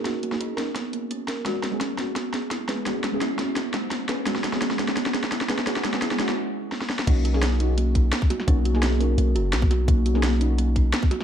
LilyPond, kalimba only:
\new Staff \with { instrumentName = "Kalimba" } { \time 4/4 \key e \lydian \tempo 4 = 171 fis'8 ais8 dis'8 cis'8 b8 ais8 cis'8 ais'8 | gis8 gis8 cis'8 cis'8 b8 gis'8 e'8 b'8 | gis'8 gis8 e'8 cis'8 b8 gis8 cis'8 b'8 | gis8 gis8 cis'8 cis'8 b8 gis'8 e'8 b'8 |
gis'8 gis8 e'8 cis'8 r2 | ais8 fis'8 cis'8 dis'8 ais8 dis'8 b8 fis'8 | cis'8 fis'8 cis'8 ais'8 ais8 fis'8 b8 fis'8 | ais8 fis'8 cis'8 dis'8 ais8 dis'8 b8 fis'8 | }